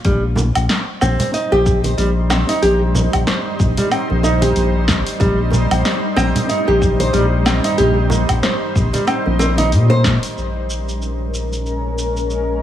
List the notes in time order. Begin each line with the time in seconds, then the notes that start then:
0.05 A#1 G3 D#4 C5, kick, open hi-hat, shaker
0.35 high bongo, high conga, low conga, shaker
0.55 A#1, open hi-hat, low woodblock, shaker
0.69 snare, open hi-hat, shaker
1.01 A#1 C4, low woodblock, shaker
1.19 open hi-hat, low conga, shaker
1.34 D#4, open hi-hat, shaker
1.52 A#1 G4, high bongo
1.66 kick, shaker
1.84 C5, open hi-hat, high conga, shaker
1.98 A#1 G3, open hi-hat, shaker
2.30 C4, snare, low woodblock, shaker
2.49 D#4, open hi-hat, shaker
2.62 A#1 G4, open hi-hat, shaker
2.95 high bongo, low conga, shaker
3.13 A#1, kick, open hi-hat, low woodblock, shaker
3.27 C5, snare, open hi-hat, shaker
3.60 A#1, kick, shaker
3.77 G3, open hi-hat, low conga, shaker
3.91 C4, open hi-hat, low woodblock, shaker
4.10 A#1, high bongo, high conga
4.23 D#4, high bongo, shaker
4.42 G4, open hi-hat, high conga, shaker
4.56 A#1, open hi-hat, shaker
4.88 kick, snare, high conga, shaker
5.07 open hi-hat, shaker
5.20 A#1 G3, kick, open hi-hat, shaker
5.51 high bongo, high conga, low conga, shaker
5.71 A#1, open hi-hat, low woodblock, shaker
5.85 snare, open hi-hat, shaker
6.16 A#1 C4, low woodblock, shaker
6.35 open hi-hat, low conga, shaker
6.49 D#4, open hi-hat, shaker
6.67 A#1 G4, high bongo
6.82 kick, shaker
7.00 C5, open hi-hat, high conga, shaker
7.13 A#1 G3, open hi-hat, shaker
7.46 C4, snare, low woodblock, shaker
7.64 D#4, open hi-hat, shaker
7.78 A#1 G4, open hi-hat, shaker
8.10 high bongo, high conga, low conga, shaker
8.29 A#1, kick, open hi-hat, low woodblock, shaker
8.43 C5, snare, open hi-hat, shaker
8.76 A#1, kick, shaker
8.93 G3, open hi-hat, high conga, low conga, shaker
9.07 C4, open hi-hat, low woodblock, shaker
9.26 A#1, high bongo, high conga
9.39 C4, high bongo, shaker
9.58 D#4, open hi-hat, high conga, shaker
9.72 A#2, open hi-hat, shaker
9.90 C5, high bongo
10.04 kick, snare, high conga, shaker
10.23 open hi-hat, shaker
10.36 A#1 G#3 C#4 A#4, shaker
10.70 shaker
10.88 shaker
11.02 shaker
11.34 shaker
11.53 shaker
11.66 shaker
11.98 shaker
12.17 shaker
12.30 shaker